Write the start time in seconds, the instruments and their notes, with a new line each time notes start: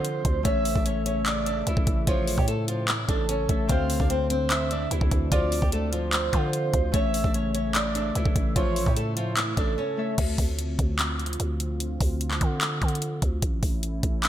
Already playing: 808-style bass D3, analog synth pad D3 C4 D4, harp D3 A4 C5, nylon-string guitar F3 F4, soft synth lead C5
0.05 closed hi-hat
0.25 808-style bass D2, kick, closed hi-hat
0.43 808-style bass A1, analog synth pad C#3 A3 E5, harp A3 A4, nylon-string guitar C#4 C#5, soft synth lead E5, kick, closed hi-hat
0.47 harp E5
0.65 open hi-hat
0.76 808-style bass A1, nylon-string guitar D4 D5, kick
0.85 nylon-string guitar C#4 C#5, closed hi-hat
1.06 nylon-string guitar C#4 C#5, closed hi-hat
1.26 soft synth lead D5, clap, closed hi-hat
1.46 nylon-string guitar D4 D5, closed hi-hat
1.67 808-style bass C#2, nylon-string guitar E3 E4, closed hi-hat
1.77 808-style bass A1, kick
1.87 808-style bass A1, kick, closed hi-hat
2.07 808-style bass A1, nylon-string guitar F3 F4, soft synth lead C#5, kick, closed hi-hat
2.28 open hi-hat
2.38 808-style bass A2, nylon-string guitar G3 G4, kick
2.48 nylon-string guitar A3 A4, closed hi-hat
2.68 nylon-string guitar F3 F4, closed hi-hat
2.88 nylon-string guitar E3 E4, clap, closed hi-hat
3.09 808-style bass A1, nylon-string guitar D4 D5, soft synth lead A4, kick, closed hi-hat
3.29 nylon-string guitar C#4 C#5, closed hi-hat
3.48 808-style bass A1, harp A3 A4 C#5 E5, kick, closed hi-hat
3.67 808-style bass D2, harp D3 D4 A4, analog synth pad D3 C4 D4, nylon-string guitar C4 C5, soft synth lead F5, kick, closed hi-hat
3.72 harp C5
3.90 open hi-hat
4.00 808-style bass D2, nylon-string guitar D4 D5, kick
4.10 nylon-string guitar C4 C5, closed hi-hat
4.30 nylon-string guitar C4 C5, closed hi-hat
4.50 soft synth lead E5, clap, closed hi-hat
4.71 nylon-string guitar D4 D5, closed hi-hat
4.91 808-style bass D2, nylon-string guitar E3 E4, closed hi-hat
5.01 808-style bass D2, kick
5.11 808-style bass D2, kick, closed hi-hat
5.32 808-style bass D2, nylon-string guitar F3 F4, soft synth lead D5, kick, closed hi-hat
5.52 open hi-hat
5.62 808-style bass D2, nylon-string guitar G3 G4, kick
5.72 nylon-string guitar A3 A4, closed hi-hat
5.92 nylon-string guitar F3 F4, closed hi-hat
6.13 soft synth lead C5, clap, closed hi-hat
6.33 808-style bass D3, nylon-string guitar F3 F4, kick, closed hi-hat
6.53 closed hi-hat
6.74 808-style bass D2, kick, closed hi-hat
6.92 808-style bass A1, analog synth pad C#3 A3 E5, harp A3 A4, nylon-string guitar C#4 C#5, soft synth lead E5, kick, closed hi-hat
6.96 harp E5
7.14 open hi-hat
7.24 808-style bass A1, nylon-string guitar D4 D5, kick
7.34 nylon-string guitar C#4 C#5, closed hi-hat
7.54 nylon-string guitar C#4 C#5, closed hi-hat
7.75 soft synth lead D5, clap, closed hi-hat
7.95 nylon-string guitar D4 D5, closed hi-hat
8.15 808-style bass C#2, nylon-string guitar E3 E4, closed hi-hat
8.25 808-style bass A1, kick
8.36 808-style bass A1, kick, closed hi-hat
8.56 808-style bass A1, nylon-string guitar F3 F4, soft synth lead C#5, kick, closed hi-hat
8.76 open hi-hat
8.86 808-style bass A2, nylon-string guitar G3 G4, kick
8.97 nylon-string guitar A3 A4, closed hi-hat
9.17 nylon-string guitar F3 F4, closed hi-hat
9.36 nylon-string guitar E3 E4, clap, closed hi-hat
9.57 808-style bass A1, nylon-string guitar D4 D5, soft synth lead A4, kick, closed hi-hat
9.78 nylon-string guitar C#4 C#5
9.97 harp A3 A4 C#5 E5
10.18 808-style bass D2, analog synth pad D3 C4 F4, kick, closed hi-hat, crash
10.38 808-style bass D2, kick, open hi-hat
10.59 closed hi-hat
10.79 808-style bass D2, kick, closed hi-hat
10.99 clap, closed hi-hat
11.19 closed hi-hat
11.26 closed hi-hat
11.33 closed hi-hat
11.40 808-style bass D2, closed hi-hat
11.60 closed hi-hat
11.80 closed hi-hat
12.01 808-style bass D2, kick, open hi-hat
12.21 closed hi-hat
12.31 clap
12.41 808-style bass D3, kick, closed hi-hat
12.61 clap, closed hi-hat
12.82 808-style bass D3, kick, closed hi-hat
12.88 closed hi-hat
12.95 closed hi-hat
13.02 closed hi-hat
13.22 808-style bass D2, kick, closed hi-hat
13.42 808-style bass A1, analog synth pad A3 C#4 E4, kick, closed hi-hat
13.63 808-style bass A1, kick, open hi-hat
13.83 closed hi-hat
14.03 808-style bass A1, kick, closed hi-hat
14.23 clap, closed hi-hat